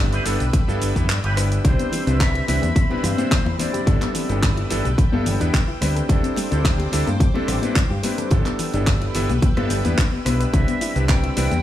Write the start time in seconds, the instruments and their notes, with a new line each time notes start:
Already playing: fingered electric bass G1, electric grand piano G3 B3 D4 E4 A4, analog synth pad B4 G5 E6
0.12 clean electric guitar D4 E4 G4 B4, closed hi-hat, shaker
0.25 fingered electric bass G1, electric grand piano G3 B3 D4 E4 A4, open hi-hat, shaker
0.40 fingered electric bass B1, closed hi-hat, shaker
0.53 kick, closed hi-hat, shaker
0.68 fingered electric bass G2, electric grand piano G3 B3 D4 E4 A4, shaker
0.81 fingered electric bass G1, open hi-hat, shaker
0.95 fingered electric bass E2, electric grand piano G3 B3 D4 E4 B4, muted clean electric guitar stroke, kick, closed hi-hat, shaker
1.09 fingered electric bass G2, clap, closed hi-hat, shaker
1.23 fingered electric bass G1, clean electric guitar D4 E4 G4 B4, closed hi-hat
1.37 electric grand piano G3 B3 D4 E4 B4, cross-stick, open hi-hat, shaker
1.51 muted clean electric guitar stroke, closed hi-hat, shaker
1.64 fingered electric bass C2, synth arpeggio sound E3, electric grand piano G3 C4 D4 E4 C5, analog synth pad C4 B5, flute C5, kick, closed hi-hat, shaker
1.79 synth arpeggio sound B3, closed hi-hat, shaker
1.92 synth arpeggio sound E3, open hi-hat, muted conga, shaker
2.06 fingered electric bass C2, electric grand piano G3 C4 D4 E4 B4, synth arpeggio sound C4, closed hi-hat, shaker
2.20 synth arpeggio sound E3, flute E5, kick, clap, closed hi-hat, shaker
2.35 synth arpeggio sound E4, closed hi-hat
2.48 fingered electric bass C2, synth arpeggio sound E3, electric grand piano G3 C4 D4 E4 B4, flute E5, open hi-hat, muted conga, shaker
2.62 fingered electric bass E2, synth arpeggio sound G4, closed hi-hat, high conga, shaker
2.75 synth arpeggio sound E3, kick, closed hi-hat, shaker
2.90 electric grand piano G3 C4 D4 E4 B4, synth arpeggio sound B3, muted conga
3.03 fingered electric bass G2, synth arpeggio sound E3, flute C5, cross-stick, open hi-hat, shaker
3.18 electric grand piano G3 C4 D4 E4 C5, synth arpeggio sound C4, closed hi-hat, high conga, shaker
3.31 synth arpeggio sound E3, kick, clap, closed hi-hat, low conga, shaker
3.46 fingered electric bass E2, synth arpeggio sound E4, muted conga
3.59 synth arpeggio sound E3, electric grand piano G3 C4 D4 E4 C5, flute D5, open hi-hat, high conga, shaker
3.73 synth arpeggio sound G4, closed hi-hat, low conga, shaker
3.86 fingered electric bass G1, synth arpeggio sound E3, electric grand piano G3 B3 D4 E4 A4, analog synth pad B4 G5, kick, closed hi-hat, muted conga, shaker
4.01 synth arpeggio sound B3, clap, closed hi-hat, low conga, shaker
4.14 synth arpeggio sound E3, open hi-hat, shaker
4.29 fingered electric bass G1, electric grand piano G3 B3 D4 E4 A4, synth arpeggio sound D4, closed hi-hat, shaker
4.42 synth arpeggio sound E3, kick, clap, closed hi-hat, muted conga, shaker
4.57 synth arpeggio sound E4, closed hi-hat
4.70 fingered electric bass G1, synth arpeggio sound E3, electric grand piano G3 B3 D4 E4 A4, open hi-hat, shaker
4.84 fingered electric bass B1, synth arpeggio sound G4, closed hi-hat, muted conga, high conga, low conga, shaker
4.98 synth arpeggio sound E3, kick, closed hi-hat, shaker
5.12 fingered electric bass G2, electric grand piano G3 B3 D4 E4 A4, synth arpeggio sound B3, high conga
5.26 fingered electric bass G1, synth arpeggio sound E3, open hi-hat, low conga, shaker
5.40 fingered electric bass E2, electric grand piano G3 B3 D4 E4 B4, synth arpeggio sound D4, closed hi-hat, muted conga, high conga, shaker
5.53 synth arpeggio sound E3, kick, clap, closed hi-hat, shaker
5.68 synth arpeggio sound E4
5.81 fingered electric bass D2, synth arpeggio sound G3, electric grand piano G3 C4 D4 E4 B4, analog synth pad C5 D6, cross-stick, open hi-hat, muted conga, shaker
5.96 synth arpeggio sound A4, closed hi-hat, shaker
6.09 fingered electric bass D2, synth arpeggio sound G3, electric grand piano G3 C4 D4 E4 A4, kick, closed hi-hat, shaker
6.23 synth arpeggio sound C4, closed hi-hat, shaker
6.36 synth arpeggio sound G3, open hi-hat, muted conga, shaker
6.51 fingered electric bass D2, electric grand piano G3 C4 D4 E4 A4, synth arpeggio sound D4, closed hi-hat, shaker
6.64 synth arpeggio sound G3, kick, clap, closed hi-hat, shaker
6.79 synth arpeggio sound G4, closed hi-hat, muted conga
6.92 fingered electric bass D2, synth arpeggio sound G3, electric grand piano G3 C4 D4 E4 A4, open hi-hat, shaker
7.07 fingered electric bass G2, synth arpeggio sound A4, closed hi-hat, high conga, shaker
7.19 synth arpeggio sound G3, kick, closed hi-hat, shaker
7.34 electric grand piano G3 C4 D4 E4 A4, synth arpeggio sound C4, muted conga
7.47 fingered electric bass A1, synth arpeggio sound G3, cross-stick, open hi-hat, shaker
7.62 electric grand piano G3 C4 D4 E4 B4, synth arpeggio sound D4, closed hi-hat, high conga, shaker
7.75 synth arpeggio sound G3, kick, clap, closed hi-hat, muted conga, low conga, shaker
7.90 fingered electric bass G2, synth arpeggio sound G4
8.03 synth arpeggio sound G3, electric grand piano G3 C4 D4 E4 B4, open hi-hat, high conga, shaker
8.18 synth arpeggio sound A4, closed hi-hat, low conga, shaker
8.30 fingered electric bass G1, synth arpeggio sound E3, electric grand piano G3 B3 D4 E4 A4, analog synth pad B4 G5 E6, kick, closed hi-hat, muted conga, shaker
8.45 synth arpeggio sound B3, clap, closed hi-hat, low conga, shaker
8.59 synth arpeggio sound E3, open hi-hat, shaker
8.74 fingered electric bass G1, electric grand piano G3 B3 D4 E4 A4, synth arpeggio sound D4, closed hi-hat, muted conga, shaker
8.87 synth arpeggio sound E3, kick, clap, closed hi-hat, shaker
9.01 synth arpeggio sound E4, closed hi-hat
9.15 fingered electric bass G1, synth arpeggio sound E3, electric grand piano G3 B3 D4 E4 A4, open hi-hat, shaker
9.29 fingered electric bass B1, synth arpeggio sound G4, closed hi-hat, muted conga, high conga, low conga, shaker
9.42 synth arpeggio sound E3, kick, closed hi-hat, shaker
9.56 fingered electric bass G2, electric grand piano G3 B3 D4 E4 A4, synth arpeggio sound B3, cross-stick, closed hi-hat, high conga
9.70 fingered electric bass G1, synth arpeggio sound G4, open hi-hat, muted conga, low conga, shaker
9.84 fingered electric bass E2, electric grand piano G3 B3 D4 E4 B4, synth arpeggio sound G3, closed hi-hat, high conga, shaker
9.98 synth arpeggio sound D4, kick, clap, closed hi-hat, shaker
10.12 synth arpeggio sound B3
10.25 fingered electric bass B1, electric grand piano G3 B3 D4 E4 B4, synth arpeggio sound B3, cross-stick, open hi-hat, muted conga, shaker
10.40 synth arpeggio sound B4, closed hi-hat, shaker
10.53 fingered electric bass C2, synth arpeggio sound E3, electric grand piano G3 C4 D4 E4 B4, analog synth pad C4 B5, flute E5, kick, closed hi-hat, shaker
10.68 synth arpeggio sound B3, closed hi-hat, shaker
10.81 synth arpeggio sound E4, open hi-hat, muted conga, shaker
10.95 fingered electric bass C2, electric grand piano G3 C4 D4 E4 B4, synth arpeggio sound C4, closed hi-hat, shaker
11.09 synth arpeggio sound E3, flute G5, kick, clap, closed hi-hat, shaker
11.23 synth arpeggio sound E4, closed hi-hat
11.36 fingered electric bass C2, synth arpeggio sound E3, electric grand piano G3 C4 D4 E4 B4, flute G5, open hi-hat, muted conga, shaker
11.51 fingered electric bass E2, synth arpeggio sound G4, closed hi-hat, high conga, shaker